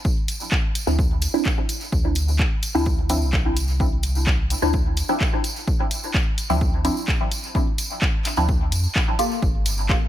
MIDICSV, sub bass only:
0, 0, Header, 1, 2, 480
1, 0, Start_track
1, 0, Key_signature, -1, "minor"
1, 0, Tempo, 468750
1, 51, Time_signature, 4, 2, 24, 8
1, 10326, End_track
2, 0, Start_track
2, 0, Title_t, "Sub bass"
2, 0, Program_c, 0, 38
2, 892, Note_on_c, 0, 38, 88
2, 1300, Note_off_c, 0, 38, 0
2, 1970, Note_on_c, 0, 38, 97
2, 2500, Note_off_c, 0, 38, 0
2, 2813, Note_on_c, 0, 38, 95
2, 3294, Note_on_c, 0, 36, 83
2, 3309, Note_off_c, 0, 38, 0
2, 4661, Note_off_c, 0, 36, 0
2, 4734, Note_on_c, 0, 38, 89
2, 5141, Note_off_c, 0, 38, 0
2, 6653, Note_on_c, 0, 38, 91
2, 7061, Note_off_c, 0, 38, 0
2, 8573, Note_on_c, 0, 38, 92
2, 8925, Note_off_c, 0, 38, 0
2, 8931, Note_on_c, 0, 41, 85
2, 9083, Note_off_c, 0, 41, 0
2, 9651, Note_on_c, 0, 31, 96
2, 10180, Note_off_c, 0, 31, 0
2, 10326, End_track
0, 0, End_of_file